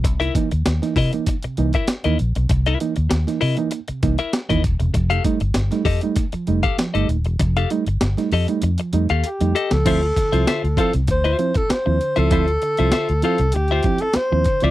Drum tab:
CC |----------------|----------------|----------------|----------------|
HH |xxxxxxoxxxxxxxxx|xxxxxxoxxxxxxxxx|xxxxxxoxxxxxxxxx|xxxxxxoxxxxxxxxx|
SD |----oo------o---|----oo------o---|----oo------o---|----oo---------o|
BD |o-o---o-o--o----|o---------o--oo-|o-o---o-o--o----|o---------------|

CC |x---------------|----------------|
HH |xxxxxxxxxxxxx-xx|xxxxxxxxxxxxx-xx|
SD |----o-------o---|----o-------o---|
BD |o-o---o-o--o----|o---------o---o-|